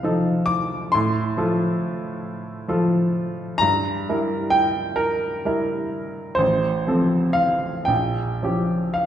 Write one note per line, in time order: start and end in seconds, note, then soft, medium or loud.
0.00 0.97 C2 medium
0.00 0.03 F3 soft
0.00 0.89 F3 soft
0.00 0.04 D#4 soft
0.00 0.90 D#4 soft
0.00 0.05 A4 soft
0.00 0.96 F5 medium
0.05 0.90 A4 medium
0.46 0.92 D6 medium
0.92 1.37 A2 medium
0.92 3.61 C6 medium
1.37 2.65 F3 soft
1.37 2.65 F4 soft
1.37 2.65 A4 medium
2.68 3.58 F3 medium
2.68 3.58 F4 soft
2.68 3.58 A4 medium
3.58 4.06 G2 medium
3.58 4.52 A#5 loud
4.09 5.43 G3 soft
4.09 5.43 E4 soft
4.09 4.94 A#4 medium
4.50 4.99 G5 medium
4.96 5.45 A#4 medium
5.45 6.36 G3 medium
5.45 6.36 E4 medium
5.45 6.36 A#4 medium
6.35 6.87 A1 medium
6.35 7.36 C5 medium
6.87 7.85 F3 soft
6.87 7.85 C4 soft
6.87 7.85 A4 soft
7.33 7.87 F5 medium
7.85 8.40 A#1 soft
7.85 8.95 G5 medium
8.43 9.06 F3 soft
8.43 9.06 C#4 soft
8.43 9.06 G4 soft
8.94 9.06 F5 medium